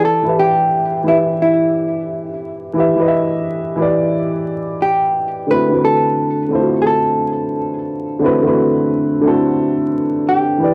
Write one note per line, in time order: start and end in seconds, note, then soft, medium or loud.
0.00 0.16 E3 medium
0.00 0.16 E4 medium
0.00 0.17 G4 medium
0.00 0.18 B4 medium
0.00 0.19 D5 medium
0.05 0.39 A4 loud
0.23 0.96 E3 medium
0.23 0.97 E4 medium
0.23 0.98 G4 medium
0.27 0.99 B4 medium
0.27 1.00 E5 medium
0.40 1.09 G4 loud
1.03 2.28 E3 medium
1.03 2.29 E4 medium
1.03 2.29 G4 medium
1.08 1.17 E4 medium
1.08 2.30 B4 medium
1.08 2.31 E5 medium
1.42 2.39 E4 medium
2.74 2.94 E3 medium
2.74 2.94 E4 medium
2.74 2.95 G4 medium
2.78 2.96 B4 medium
2.78 2.97 E5 medium
2.95 3.69 E3 medium
2.95 3.70 E4 medium
2.95 3.71 G4 medium
3.00 3.72 B4 medium
3.00 3.04 D#5 medium
3.08 3.76 E5 medium
3.76 5.00 E3 medium
3.76 5.01 E4 medium
3.76 5.02 G4 medium
3.81 5.03 B4 medium
3.81 5.04 D5 loud
4.82 5.50 G4 medium
5.47 5.67 D3 medium
5.47 5.67 A3 medium
5.47 5.68 C4 medium
5.47 5.69 E4 medium
5.51 5.69 F#4 medium
5.51 5.84 B4 loud
5.51 5.70 B4 medium
5.68 6.42 D3 medium
5.68 6.43 A3 medium
5.68 6.43 C4 medium
5.68 6.44 E4 medium
5.73 6.45 F#4 medium
5.73 6.45 B4 medium
5.85 6.81 A4 loud
6.49 7.73 D3 medium
6.49 7.74 A3 medium
6.49 7.75 C4 medium
6.49 7.75 E4 medium
6.54 6.61 F4 soft
6.54 7.76 C5 medium
6.60 7.79 F#4 medium
6.82 6.86 G#4 medium
6.87 7.84 A4 medium
8.19 8.39 D3 medium
8.19 8.40 A3 medium
8.19 8.40 C4 medium
8.19 8.41 E4 medium
8.24 8.42 F#4 medium
8.24 8.42 B4 loud
8.41 9.15 D3 medium
8.41 9.15 A3 medium
8.41 9.16 C4 medium
8.41 9.17 E4 medium
8.46 9.17 F#4 medium
8.46 9.18 B4 loud
9.21 10.46 D3 loud
9.21 10.46 A3 medium
9.21 10.47 C4 medium
9.21 10.48 E4 medium
9.26 10.48 F#4 medium
9.26 10.49 A4 loud
10.29 10.74 G4 medium
10.58 10.74 E3 medium
10.58 10.74 E4 medium
10.58 10.74 G4 medium
10.63 10.74 B4 medium
10.63 10.74 D5 medium